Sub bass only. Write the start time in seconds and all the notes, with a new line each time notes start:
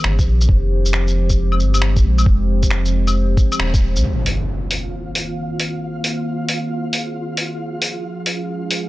0.04 G1
0.26 A#1
0.49 F1
1.60 G1
2.04 A#1
2.26 F1
3.60 D#1
3.96 C2